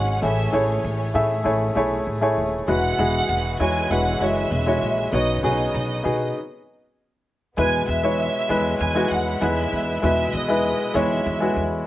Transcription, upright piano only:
Already playing: G#3 C#4 F#4 C#5
0.22 A2 E3 A3 E4 G#4 C#5
0.52 A3 E4 G#4 C#5
1.14 A3 E4 G#4 E5
1.44 A3 E4 G#4 C#5
1.75 A3 E4 G#4 C#5
2.21 A3 E4 G#4 C#5
2.67 B2 G#3 E4 F#4 B4
2.98 G#3 E4 F#4 G#4
3.59 G#3 E4 F#4 C#5
3.90 G#3 E4 F#4 B4
4.20 G#3 E4 F#4 C#5
4.66 G#3 E4 F#4 C#5
5.12 B3 D#4 F#4 C#5
5.43 B3 C#4 F#4 G#4
5.50 D#4
6.03 B3 D#4 F#4 G#4
7.57 B2 G#3 B3 E4 B4
8.03 G#3 B3 E4 C#5
8.49 G#3 B3 E4 B4
8.95 G#3 B3 E4 F#4
9.41 G#3 B3 E4 B4
10.02 B2 G#3 B3 E4 B4
10.48 G#3 B3 E4 B4
10.94 G#3 B3 E4 C#5
11.40 G#3 B3 E4 F#4

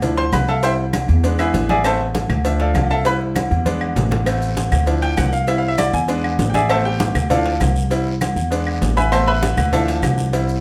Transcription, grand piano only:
0.02 F3 D4 E4
0.17 C5 C6
0.33 B4 B5
0.49 A4 E5 F5 A5
0.63 G3 C4 E4 C5 E5 G5 C6
1.23 G#3 B3 D4
1.39 E4 G#4 B4 E5
1.69 G#4 D5 E5 G#5
1.84 A3 B3 C4 A4 C5 E5 A5
2.45 F3 D4 E5
2.61 F4 A4 D5 F5
2.91 A4 E5 F5 A5
3.05 G3 C4 E4 B4 B5
3.65 G#3 B3 D4
4.26 A3 B3 C4
4.86 F3 D4 E4
5.02 G5
5.17 F#5
5.33 F5
5.47 G3 C4 E4 E5
5.58 F5
5.68 E5
5.78 D5
5.94 G#5
6.08 G#3 B3 D4
6.50 G5
6.54 G#4 D5 E5 G#5
6.70 A3 B3 C4 A4 C5 E5 A5
6.85 G4 G5
7.30 F3 D4 E4 F4 A4 D5 F5
7.90 G3 C4 E4
8.51 G#3 B3 D4
8.97 B4 E5 G#5 B5
9.12 A3 B3 C4 C5 E5 A5 C6
9.27 B4 E5 B5
9.72 E3 F3 D4 A4 E5 F5 A5
10.33 G3 C4 E4

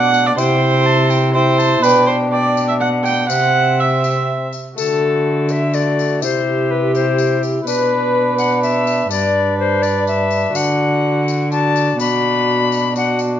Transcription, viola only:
Already playing: F#5
0.26 D5
0.38 C5
1.34 C5
1.82 B4
2.07 C5
2.32 D5
2.68 E5
2.80 F#5
3.04 G5
3.29 F#5
3.80 E5
4.76 F#4
5.73 F#4
6.21 G4
7.67 B4
9.11 B4
10.55 F#4
11.51 F#4
11.99 F#4
12.95 F#4

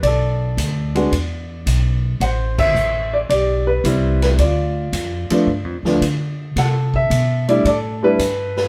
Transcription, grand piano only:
0.03 A4 D5
0.95 G#3 B3 D4 F#4
2.22 C5 F#5
2.59 E5
3.14 D5
3.30 G4 D5
3.67 B4
3.85 G3 B3 C4 E4
4.23 B4
4.39 F4 D5
5.31 F3 A3 B3 D4
5.85 F3 A3 B3 D4
6.58 A4 F#5
6.96 E5
7.48 G3 A3 D4 E4 D5
7.67 A4 D5
8.03 G3 A3 D4 E4 B4
8.58 B4

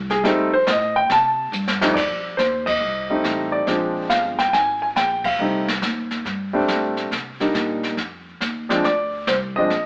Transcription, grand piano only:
0.11 G#4
0.24 G3 A3 C4 D#4 A4
0.54 C5
0.70 D#5
0.96 G5
1.12 A5
1.81 F2 G3 A3 C4 D#4
1.94 D5
2.37 C5
2.66 D#5
3.10 G3 A3 C4 D#4
3.52 D5
3.67 F3 G#3 C4 D4
4.10 F5
4.39 G5
4.53 G#5
4.82 G#5
4.96 G5
5.25 F5
5.40 G3 A3 C4 D#4
6.53 G3 A3 C4 D4
7.40 G3 A#3 D4 D#4
8.69 F3 G#3 C4 D4
8.85 D5
9.28 C5
9.56 F3 G#3 C4 D4 D#5

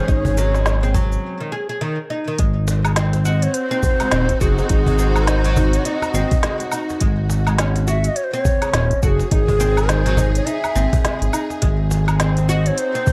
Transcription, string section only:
Already playing: G#3 C#4 G#4
2.68 C4
3.60 F#4
3.69 D#4
9.05 G#4
12.13 C4
12.38 D#4

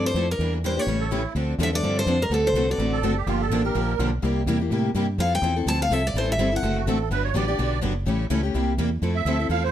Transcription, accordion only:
1.00 A4
1.11 E4
2.93 A4
3.17 G4
3.28 F4
3.41 A4
3.65 A#4
6.77 F#4
6.87 A4
7.12 B4
7.24 C#5
7.36 D5
9.15 E5
9.50 F5
9.64 C5

